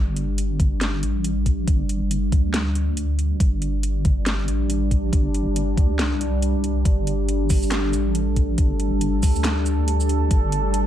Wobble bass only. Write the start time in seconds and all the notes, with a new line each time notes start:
Already playing: G1
1.03 A1
1.68 G1
2.02 G1
2.32 D2
3.40 G1
4.48 A1
5.13 G1
5.47 G1
5.78 D2
5.99 C2
6.85 G1
7.93 A1
8.58 G1
8.92 G1
9.23 D2
10.31 G1